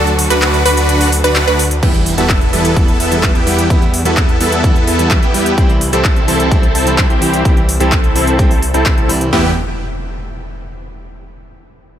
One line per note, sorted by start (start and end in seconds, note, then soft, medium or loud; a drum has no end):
0.00 0.28 D2 loud
0.00 1.79 D3 medium
0.00 1.79 F#3 medium
0.00 1.79 A3 medium
0.00 1.79 F#4 medium
0.00 1.79 A4 medium
0.07 closed hi-hat soft
0.19 open hi-hat loud
0.30 0.63 D2 loud
0.30 0.63 D4 medium
0.30 0.63 F#4 medium
0.30 0.63 B4 medium
0.30 closed hi-hat medium
0.42 clap loud
0.42 closed hi-hat medium
0.54 closed hi-hat soft
0.66 1.22 D2 loud
0.66 1.10 D4 loud
0.66 1.10 F#4 medium
0.66 1.10 B4 loud
0.66 open hi-hat loud
0.77 closed hi-hat medium
0.89 closed hi-hat medium
1.01 open hi-hat medium
1.12 open hi-hat loud
1.24 1.45 D2 loud
1.24 1.45 D4 loud
1.24 1.45 F#4 medium
1.24 1.45 B4 loud
1.24 closed hi-hat medium
1.36 clap loud
1.36 closed hi-hat medium
1.48 1.80 D2 loud
1.48 1.61 D4 medium
1.48 1.61 F#4 medium
1.48 1.61 B4 loud
1.48 closed hi-hat soft
1.59 open hi-hat loud
1.71 closed hi-hat medium
1.82 2.16 E2 loud
1.82 2.15 E3 medium
1.82 2.15 G3 medium
1.82 1.96 B3 medium
1.82 2.15 B3 medium
1.82 1.96 E4 medium
1.82 2.15 E4 medium
1.82 1.96 G4 medium
1.82 kick loud
1.82 closed hi-hat medium
1.82 crash medium
1.82 impact medium
1.94 closed hi-hat soft
2.06 open hi-hat loud
2.17 2.51 E2 loud
2.17 2.30 E3 medium
2.17 2.30 G3 medium
2.17 2.50 B3 medium
2.17 2.30 B3 medium
2.17 2.50 E4 medium
2.17 2.31 F#4 medium
2.17 2.50 A4 medium
2.17 closed hi-hat medium
2.30 kick loud
2.30 clap loud
2.30 closed hi-hat medium
2.41 closed hi-hat soft
2.52 2.98 E2 loud
2.52 2.73 E3 medium
2.52 2.74 G3 medium
2.52 2.97 B3 medium
2.52 2.74 B3 medium
2.52 2.97 E4 medium
2.52 2.74 E4 medium
2.52 2.97 A4 loud
2.52 open hi-hat loud
2.65 closed hi-hat medium
2.76 2.89 E3 loud
2.76 2.89 G3 medium
2.76 2.89 B3 medium
2.76 2.89 E4 medium
2.76 kick loud
2.76 closed hi-hat medium
2.88 closed hi-hat soft
3.00 3.33 E2 medium
3.00 3.32 B3 medium
3.00 3.32 E4 medium
3.00 3.32 A4 medium
3.00 open hi-hat loud
3.11 3.31 E3 medium
3.11 3.31 G3 medium
3.11 3.32 B3 medium
3.11 3.32 E4 medium
3.11 closed hi-hat medium
3.23 kick loud
3.23 clap loud
3.23 closed hi-hat medium
3.35 3.68 E2 loud
3.35 3.67 B3 medium
3.35 3.67 E4 medium
3.35 3.67 G4 medium
3.35 closed hi-hat soft
3.46 3.67 E3 medium
3.46 3.67 G3 medium
3.46 3.68 B3 medium
3.46 3.68 E4 medium
3.46 open hi-hat loud
3.59 closed hi-hat medium
3.70 4.03 E2 loud
3.70 4.02 E3 medium
3.70 4.02 G3 medium
3.70 3.83 B3 medium
3.70 4.03 B3 medium
3.70 3.83 E4 medium
3.70 4.03 E4 medium
3.70 3.83 G4 medium
3.70 kick loud
3.70 closed hi-hat medium
3.82 closed hi-hat soft
3.94 open hi-hat loud
4.05 4.38 E2 loud
4.05 4.17 E3 medium
4.05 4.18 G3 medium
4.05 4.38 B3 medium
4.05 4.18 B3 medium
4.05 4.38 E4 medium
4.05 4.18 F#4 medium
4.05 4.38 A4 medium
4.05 closed hi-hat medium
4.17 kick loud
4.17 clap loud
4.17 closed hi-hat medium
4.29 closed hi-hat soft
4.40 4.85 E2 medium
4.40 4.61 E3 medium
4.40 4.61 G3 medium
4.40 4.85 B3 medium
4.40 4.61 B3 medium
4.40 4.85 E4 medium
4.40 4.61 E4 medium
4.40 4.85 A4 loud
4.40 open hi-hat loud
4.52 closed hi-hat soft
4.63 4.76 E3 loud
4.63 4.76 G3 medium
4.63 4.76 B3 medium
4.63 4.77 E4 medium
4.63 kick loud
4.63 closed hi-hat medium
4.76 closed hi-hat soft
4.87 5.20 E2 loud
4.87 5.20 B3 medium
4.87 5.20 E4 medium
4.87 5.20 A4 medium
4.87 open hi-hat loud
4.99 5.19 E3 medium
4.99 5.19 G3 medium
4.99 5.19 B3 medium
4.99 5.19 E4 medium
4.99 closed hi-hat medium
5.11 kick loud
5.11 clap loud
5.11 closed hi-hat medium
5.23 5.55 E2 loud
5.23 5.55 B3 medium
5.23 5.55 E4 medium
5.23 5.55 G4 medium
5.23 closed hi-hat soft
5.34 5.55 E3 medium
5.34 5.55 G3 medium
5.34 5.55 B3 medium
5.34 5.55 E4 loud
5.34 open hi-hat loud
5.46 closed hi-hat medium
5.57 5.91 C2 loud
5.57 5.90 E3 medium
5.57 5.90 G3 medium
5.57 5.71 C4 medium
5.57 5.90 C4 medium
5.57 5.71 E4 medium
5.57 5.90 E4 loud
5.57 5.71 G4 medium
5.57 kick loud
5.57 closed hi-hat soft
5.69 closed hi-hat soft
5.81 open hi-hat loud
5.92 6.26 C2 loud
5.92 6.05 E3 medium
5.92 6.05 G3 medium
5.92 6.25 C4 medium
5.92 6.05 C4 medium
5.92 6.25 E4 medium
5.92 6.06 G4 medium
5.92 6.25 A4 medium
5.92 closed hi-hat medium
6.05 kick loud
6.05 clap loud
6.05 closed hi-hat soft
6.16 closed hi-hat soft
6.27 6.73 C2 loud
6.27 6.48 E3 medium
6.27 6.49 G3 medium
6.27 6.72 C4 loud
6.27 6.49 C4 medium
6.27 6.72 E4 medium
6.27 6.49 E4 medium
6.27 6.72 A4 loud
6.27 open hi-hat loud
6.40 closed hi-hat soft
6.51 6.64 E3 loud
6.51 6.64 G3 medium
6.51 6.64 C4 medium
6.51 6.64 E4 loud
6.51 kick loud
6.51 closed hi-hat soft
6.63 closed hi-hat soft
6.75 7.08 C2 medium
6.75 7.07 C4 medium
6.75 7.07 E4 medium
6.75 7.07 A4 medium
6.75 open hi-hat loud
6.86 7.06 E3 medium
6.86 7.06 G3 medium
6.86 7.06 C4 medium
6.86 7.07 E4 medium
6.86 closed hi-hat soft
6.98 kick loud
6.98 clap loud
6.98 closed hi-hat medium
7.10 7.43 C2 loud
7.10 7.42 C4 medium
7.10 7.42 E4 medium
7.10 7.42 G4 medium
7.10 closed hi-hat soft
7.21 7.42 E3 medium
7.21 7.42 G3 medium
7.21 7.43 C4 medium
7.21 7.43 E4 loud
7.21 open hi-hat loud
7.34 closed hi-hat medium
7.45 7.78 C2 loud
7.45 7.77 E3 medium
7.45 7.77 G3 medium
7.45 7.58 C4 medium
7.45 7.78 C4 medium
7.45 7.58 E4 medium
7.45 7.78 E4 medium
7.45 7.58 G4 medium
7.45 kick loud
7.45 closed hi-hat soft
7.57 closed hi-hat soft
7.69 open hi-hat loud
7.80 8.13 C2 loud
7.80 7.92 E3 medium
7.80 7.93 G3 medium
7.80 8.13 C4 medium
7.80 7.93 C4 medium
7.80 8.13 E4 medium
7.80 7.93 G4 loud
7.80 8.13 A4 medium
7.80 closed hi-hat soft
7.92 kick loud
7.92 clap loud
7.92 closed hi-hat medium
8.04 closed hi-hat soft
8.15 8.72 C2 loud
8.15 8.36 E3 medium
8.15 8.36 G3 medium
8.15 8.60 C4 medium
8.15 8.36 C4 medium
8.15 8.60 E4 medium
8.15 8.36 E4 medium
8.15 8.60 A4 loud
8.15 open hi-hat loud
8.27 closed hi-hat soft
8.38 8.51 E3 loud
8.38 8.51 G3 medium
8.38 8.51 C4 medium
8.38 8.52 E4 loud
8.38 kick loud
8.38 closed hi-hat soft
8.51 open hi-hat medium
8.62 open hi-hat loud
8.73 8.95 C2 loud
8.73 8.94 E3 medium
8.73 8.94 G3 medium
8.73 8.95 C4 loud
8.73 8.94 C4 medium
8.73 8.95 E4 medium
8.73 8.94 E4 medium
8.73 8.95 A4 loud
8.73 closed hi-hat medium
8.86 kick loud
8.86 clap loud
8.86 closed hi-hat medium
8.98 9.30 C2 loud
8.98 9.11 C4 medium
8.98 9.11 E4 medium
8.98 9.11 A4 loud
8.98 closed hi-hat soft
9.08 9.30 E3 medium
9.08 9.30 G3 medium
9.08 9.30 C4 medium
9.08 9.30 E4 medium
9.08 open hi-hat loud
9.21 closed hi-hat medium
9.31 9.55 E2 medium
9.31 9.49 E3 medium
9.31 9.50 G3 medium
9.31 9.50 B3 medium
9.31 9.50 E4 medium
9.31 9.51 E4 medium
9.31 9.50 G4 medium
9.31 snare loud
9.31 impact medium